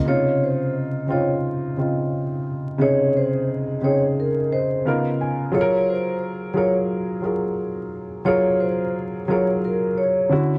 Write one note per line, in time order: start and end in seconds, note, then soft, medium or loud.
0.00 0.10 A#3 medium
0.05 1.04 C3 medium
0.05 1.03 C#3 medium
0.05 1.04 D#4 medium
0.05 1.05 F4 medium
0.05 0.42 C#5 medium
0.44 0.74 C5 medium
1.07 1.73 C#3 medium
1.07 1.74 C4 medium
1.07 1.74 D#4 medium
1.07 1.75 F4 medium
1.12 1.29 C#5 medium
1.77 2.74 C#3 medium
1.77 2.75 C4 medium
1.77 2.75 D#4 medium
1.77 2.76 F4 medium
2.78 3.77 C3 medium
2.78 3.76 C#3 medium
2.78 3.77 D#4 medium
2.78 3.78 G#4 medium
2.78 3.15 C#5 medium
3.17 3.47 C5 medium
3.82 4.84 C#3 medium
3.82 4.85 C4 medium
3.82 4.85 D#4 medium
3.82 4.86 G#4 medium
3.82 4.02 C#5 medium
4.20 4.49 A#4 medium
4.52 4.83 C5 medium
4.52 4.84 D#5 medium
4.85 5.50 C#3 medium
4.85 5.50 B3 medium
4.85 5.50 D#4 medium
4.85 5.51 F4 medium
4.85 5.51 A#4 medium
4.85 5.18 F5 medium
5.21 5.52 G#5 medium
5.52 6.49 F#3 medium
5.52 6.50 F4 medium
5.52 6.50 G#4 medium
5.52 5.61 A4 medium
5.52 5.85 C#5 medium
5.61 6.54 A#4 loud
5.90 6.20 C5 medium
6.54 7.19 F#3 medium
6.54 7.20 F4 medium
6.54 7.20 G#4 medium
6.54 7.21 A#4 medium
6.54 6.75 C#5 medium
7.22 8.19 F#3 medium
7.22 8.20 F4 medium
7.22 8.21 G#4 medium
7.22 8.21 A#4 medium
8.25 9.22 F#3 medium
8.25 9.22 F4 medium
8.25 9.23 G#4 medium
8.25 9.24 A#4 medium
8.25 8.57 C#5 medium
8.60 8.91 C5 medium
9.28 10.31 F#3 medium
9.28 10.31 F4 medium
9.28 10.32 G#4 medium
9.28 10.32 A#4 medium
9.28 9.48 C#5 medium
9.65 9.95 A#4 medium
9.98 10.28 C#5 medium
10.29 10.59 D3 medium
10.29 10.59 C#4 medium
10.29 10.59 E4 medium
10.29 10.59 F#4 medium